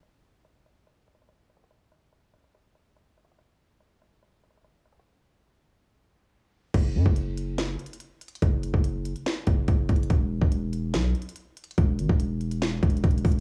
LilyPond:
<<
  \new Staff \with { instrumentName = "808-style bass" } { \clef bass \time 4/4 \key e \major \tempo 4 = 143 r1 | r1 | r1 | r1 |
fis,,8 fis,16 fis,,4.~ fis,,16 r4. | fis,,8. fis,,4 r8. fis,,8 fis,,8 fis,,8 | e,,8. e,,4~ e,,16 b,,8 r4. | e,,8 gis,,16 e,,4.~ e,,16 e,,8 e,,8 e,,8 | }
  \new DrumStaff \with { instrumentName = "Drums" } \drummode { \time 4/4 hh4 hh8 hh8 \tuplet 3/2 { hh16 r16 r16 hh16 hh16 hh16 hh16 r16 r16 hh16 hh16 hh16 } | hh8 hh8 hh8 hh16 hh16 hh8 hh8 \tuplet 3/2 { hh16 r16 r16 hh16 hh16 hh16 } | hh4 hh8 hh8 \tuplet 3/2 { hh16 r16 r16 hh16 hh16 hh16 hh16 r16 r16 hh16 hh16 hh16 } | r4 r4 r4 r4 |
<cymc hh bd>8. bd16 hh8 hh8 \tuplet 3/2 { <hh sn>16 r16 r16 hh16 hh16 hh16 hh16 r16 r16 hh16 hh16 hh16 } | <hh bd>8 hh16 bd16 hh8 hh16 hh16 <hh sn>8 <hh bd>8 \tuplet 3/2 { <hh bd>16 r16 r16 <hh bd>16 hh16 hh16 } | <hh bd>8. bd16 hh8 hh8 \tuplet 3/2 { <hh sn>16 r16 r16 hh16 hh16 hh16 hh16 r16 r16 hh16 hh16 hh16 } | <hh bd>8 hh16 bd16 hh8 hh16 hh16 \tuplet 3/2 { <hh sn>16 r16 r16 <hh bd>16 hh16 hh16 <hh bd>16 hh16 hh16 <hh hho bd>16 hh16 r16 } | }
>>